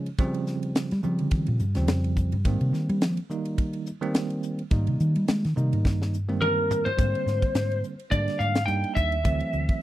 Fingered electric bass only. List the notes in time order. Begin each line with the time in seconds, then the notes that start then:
0.92 G3
1.05 F3
1.20 D3
1.32 D#3
1.48 A#2
1.60 G2
1.77 D#2
1.89 F2
2.33 G2
2.46 G#2
2.61 C3
2.73 D#3
2.89 G3
3.02 F3
4.72 G#2
4.88 C3
5.00 D#3
5.16 G3
5.29 G#3
5.45 D#3
5.57 C3
5.73 G#2
5.86 G2
6.98 G#2
7.26 G#2
7.54 G#2
8.12 G#2
8.40 G#2
8.68 G2
8.97 D#2
9.25 D2
9.53 D2